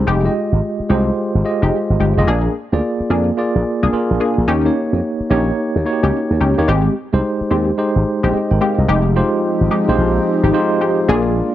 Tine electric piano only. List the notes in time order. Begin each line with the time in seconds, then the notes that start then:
0.24 G#3 F4 G4 D#5
0.89 G#3 F4 G4 C5
1.44 G#3 F4 G4 D#5
2.17 G#3 F4 G4 D#5
2.72 A#3 F4 G#4 D5
3.37 A#3 F4 G#4 D5
3.93 A#3 F4 G#4 A#4
4.65 A#3 D#4 G4 C#5
5.30 A#3 D#4 G4 C#5
5.85 A#3 D#4 F#4 C#5
5.93 G4
6.58 A#3 D#4 G4 C#5
7.13 G#3 D#4 G4 C5
7.78 G#3 D#4 G4 C5
8.33 G4 D#5
8.51 A#4 G5
8.61 G#4 F5
8.79 G4 D#5
9.15 G#3 D#4 F4 G4 C5
9.88 G#3 D#4 F4 G4 C5
10.53 G#3 D#4 F4 G4 C5
11.08 A#3 D4 F4 G#4 D5